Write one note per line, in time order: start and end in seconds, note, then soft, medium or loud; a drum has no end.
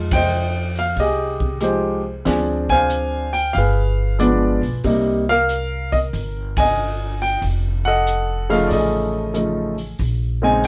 0.00 0.93 F2 medium
0.00 0.27 F3 medium
0.00 0.27 G#3 soft
0.00 0.28 D#4 medium
0.00 0.28 F4 medium
0.11 1.38 C5 medium
0.11 0.98 D#5 medium
0.11 0.79 G5 medium
0.11 kick medium
0.11 ride medium
0.75 0.99 F5 medium
0.75 open hi-hat soft
0.96 2.22 C2 medium
0.96 1.61 G4 medium
0.96 1.63 G#4 medium
0.96 1.65 D#5 medium
0.96 kick soft
0.96 open hi-hat soft
1.40 kick medium
1.61 2.00 F3 medium
1.61 2.00 G#3 medium
1.61 2.01 D#4 medium
1.61 2.01 G4 medium
1.61 2.23 G#4 soft
1.61 2.13 C5 medium
1.61 closed hi-hat soft
2.25 3.51 D2 medium
2.25 3.25 F3 medium
2.25 3.25 C4 medium
2.25 3.25 D4 medium
2.25 3.26 G#4 medium
2.25 kick soft
2.25 snare soft
2.25 open hi-hat soft
2.69 3.52 C5 medium
2.69 3.52 F5 medium
2.69 3.36 G#5 loud
2.69 kick medium
2.90 closed hi-hat soft
3.33 3.55 G5 medium
3.33 open hi-hat soft
3.53 4.59 G1 medium
3.53 4.15 F5 medium
3.53 kick soft
3.53 open hi-hat soft
3.58 4.81 G#4 medium
3.58 4.22 B4 medium
4.19 4.58 F3 medium
4.19 4.58 G#3 medium
4.19 4.59 B3 medium
4.19 4.59 D4 medium
4.19 4.70 D5 medium
4.19 closed hi-hat soft
4.23 4.82 F4 soft
4.23 4.82 B4 soft
4.62 4.82 B1 medium
4.62 open hi-hat soft
4.84 6.09 C2 medium
4.84 5.23 C3 medium
4.84 5.23 G3 medium
4.84 5.24 A#3 medium
4.84 5.24 D#4 medium
4.84 kick soft
4.84 open hi-hat soft
5.29 6.54 A#4 medium
5.29 5.89 F5 loud
5.49 closed hi-hat medium
5.92 5.97 D#5 medium
5.92 kick medium
5.92 open hi-hat soft
6.13 7.38 G1 medium
6.13 kick soft
6.13 open hi-hat soft
6.57 7.40 D#5 medium
6.57 7.17 G#5 medium
6.57 kick medium
6.57 ride medium
7.21 7.41 G5 medium
7.21 open hi-hat soft
7.42 8.67 F1 medium
7.42 kick soft
7.42 open hi-hat soft
7.85 8.73 A4 medium
7.85 8.71 D#5 medium
7.85 8.52 F#5 loud
8.07 closed hi-hat medium
8.50 9.31 C#3 medium
8.50 9.31 F3 medium
8.50 9.31 A3 medium
8.50 9.31 D#4 medium
8.50 8.65 F5 medium
8.50 open hi-hat soft
8.67 9.96 A1 medium
8.67 8.71 D5 medium
8.67 kick soft
8.67 open hi-hat soft
8.73 9.97 G#4 medium
8.73 9.98 A4 medium
8.73 9.75 D#5 medium
9.34 9.73 C#3 medium
9.34 9.74 F3 medium
9.34 9.74 A3 medium
9.34 9.74 D#4 medium
9.34 closed hi-hat soft
9.78 open hi-hat soft
9.99 10.67 A#1 medium
9.99 kick soft
9.99 open hi-hat soft
10.42 10.67 C#3 medium
10.42 10.67 G#3 medium
10.42 10.67 C4 medium
10.42 10.67 D#4 medium
10.42 10.65 G#5 medium
10.64 closed hi-hat medium